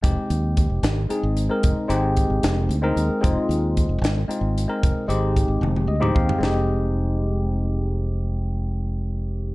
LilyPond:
<<
  \new Staff \with { instrumentName = "Tine electric piano" } { \time 6/8 \key f \minor \tempo 4. = 75 << { r2. | r2. | r2. | r2 ees''8 f''8 |
r2. | r2. | } \\ { <aes c' ees' g'>4.~ <aes c' ees' g'>16 r16 <aes c' ees' aes'>8. <aes c' ees' bes'>16~ | <aes c' ees' bes'>8 <aes c' ees' g'>4. r16 <aes c' ees' bes'>8. | <aes c' ees' f'>4.~ <aes c' ees' f'>16 r16 <aes c' ees' f'>8. <aes c' ees' bes'>16~ | <aes c' ees' bes'>8 <aes c' ees' g'>4. r16 <aes c' ees' g'>8. |
<aes c' ees' g'>2.~ | <aes c' ees' g'>2. | } >> }
  \new Staff \with { instrumentName = "Fingered electric bass" } { \clef bass \time 6/8 \key f \minor f,,16 r16 ees,8. f,,16 aes,,8 r16 aes,,8 r16 | f,,16 r16 aes,,8. aes,,16 f,,8 d,8 ees,16 r16 | f,,16 r16 ees,8. f,,16 aes,,8 r16 aes,,8 r16 | f,,16 r16 aes,,8. aes,,16 f,,8 d,8 ees,16 r16 |
f,,2.~ | f,,2. | }
  \new DrumStaff \with { instrumentName = "Drums" } \drummode { \time 6/8 <hh bd>8 hh8 <hh bd>8 <hh sn>8 hh8 hh8 | <hh bd>8 hh8 <hh bd>8 <hh sn>8 hh8 hh8 | <hh bd>8 hh8 <hh bd>8 <hh sn>8 hh8 hh8 | <hh bd>8 hh8 <hh bd>8 tommh16 tommh8 toml16 bd16 tomfh16 |
sn4. r4. | r4. r4. | }
>>